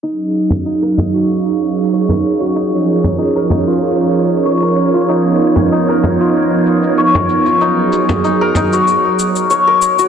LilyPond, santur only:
\new Staff \with { instrumentName = "Santur" } { \time 4/4 \key ees \minor \tempo 4 = 95 ees'4 ees'16 bes'16 ees'16 ges'16 r4 des''16 bes'16 r16 ges'16 | ees'4 ees'16 bes'16 ees'16 f'16 r4 des''16 bes'16 r16 f'16 | ees'4 ees'16 bes'16 ees'16 f'16 r4 des''16 bes'16 r16 f'16 | ees'4 ees'16 bes'16 ees'16 ges'16 r4 des''16 bes'16 r16 ges'16 | }